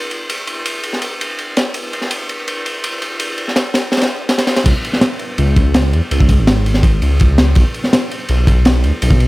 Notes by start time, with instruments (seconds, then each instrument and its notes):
0.11 ride
0.29 ride
0.47 ride
0.66 ride
0.83 ride
0.93 snare
1.02 ride
1.21 ride
1.39 ride
1.57 snare, ride
1.74 ride
1.93 ride
2.01 snare
2.11 ride
2.29 ride
2.48 ride
2.66 ride
2.84 ride
3.02 ride
3.20 ride
3.38 ride
3.48 snare
3.56 snare, ride
3.74 snare, ride
3.92 snare, ride
3.97 snare, ride
4.02 snare, ride
4.29 snare, ride
4.38 snare, ride
4.47 snare, ride
4.56 snare, ride
4.66 detuned saw bass C#2, kick, crash, ride
4.85 ride
4.93 snare
5.01 snare, ride
5.19 ride
5.38 detuned saw bass C#2, ride
5.56 kick, ride
5.74 snare, ride
5.93 detuned saw bass E2, ride
6.11 detuned saw bass C#2, ride
6.20 kick
6.29 kick, ride
6.39 detuned saw bass G#1
6.47 snare, ride
6.66 ride
6.74 snare
6.83 kick, ride
7.02 detuned saw bass C#2, ride
7.20 kick, ride
7.38 snare, ride
7.55 detuned saw bass B1, kick, ride
7.74 ride
7.84 snare
7.93 snare, ride
8.11 ride
8.28 detuned saw bass B1, ride
8.47 kick, ride
8.65 snare, ride
8.84 detuned saw bass D2, ride
9.02 detuned saw bass B1, ride
9.11 kick
9.20 ride